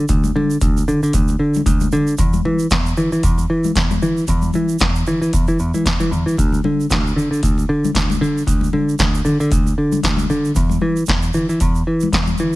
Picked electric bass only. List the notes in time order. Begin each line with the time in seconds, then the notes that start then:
0.09 D2
0.36 D3
0.62 D2
0.88 D3
1.03 D3
1.14 D2
1.39 D3
1.66 D2
1.93 D3
2.19 E2
2.45 E3
2.71 E2
2.97 E3
3.12 E3
3.24 E2
3.50 E3
3.76 E2
4.02 E3
4.29 E2
4.55 E3
4.81 E2
5.08 E3
5.21 E3
5.34 E2
5.48 E3
5.60 E2
5.74 E3
5.86 E2
6.00 E3
6.11 E2
6.26 E3
6.39 D2
6.65 D3
6.91 D2
7.16 D3
7.31 D3
7.43 D2
7.69 D3
7.95 D2
8.21 D3
8.47 D2
8.73 D3
9.00 D2
9.25 D3
9.40 D3
9.52 D2
9.78 D3
10.04 D2
10.30 D3
10.56 E2
10.82 E3
11.09 E2
11.34 E3
11.49 E3
11.61 E2
11.87 E3
12.13 E2
12.40 E3